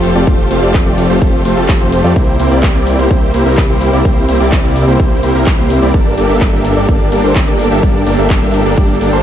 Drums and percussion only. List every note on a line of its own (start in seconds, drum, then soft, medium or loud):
0.04 open hi-hat loud
0.27 kick loud
0.51 open hi-hat loud
0.74 kick loud
0.74 clap loud
0.98 open hi-hat loud
1.22 kick loud
1.45 open hi-hat loud
1.69 kick loud
1.69 clap loud
1.92 open hi-hat loud
2.16 kick loud
2.40 open hi-hat loud
2.63 kick loud
2.63 clap loud
2.87 open hi-hat loud
3.11 kick loud
3.34 open hi-hat loud
3.57 kick loud
3.57 clap loud
3.81 open hi-hat loud
4.05 kick loud
4.29 open hi-hat loud
4.52 kick loud
4.52 clap loud
4.76 open hi-hat loud
5.00 kick loud
5.23 open hi-hat loud
5.46 kick loud
5.46 clap loud
5.70 open hi-hat loud
5.94 kick loud
6.18 open hi-hat loud
6.41 kick loud
6.41 clap loud
6.65 open hi-hat loud
6.89 kick loud
7.12 open hi-hat loud
7.35 kick loud
7.35 clap loud
7.59 open hi-hat loud
7.83 kick loud
8.07 open hi-hat loud
8.30 kick loud
8.30 clap loud
8.54 open hi-hat loud
8.78 kick loud
9.01 open hi-hat loud